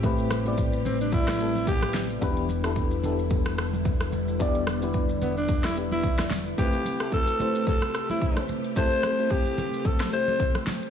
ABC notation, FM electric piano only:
X:1
M:4/4
L:1/16
Q:"Swing 16ths" 1/4=110
K:Am
V:1 name="FM electric piano"
[A,CEGB]2 z [A,B,CEGd]6 z [A,CEGA]4- [A,CEGA] z | [B,DEGB]2 z [B,DEGA]2 z [B,DEGA]6 z4 | [B,DEGd]2 z [B,DEGB]6 z [B,DEGB]4- [B,DEGB] z | [A,CEGB]2 z [A,CEGA]2 z [A,CEGc]6 z4 |
[A,CEGA]2 z [A,CEGc]6 z [A,CEGc]4- [A,CEGc] z |]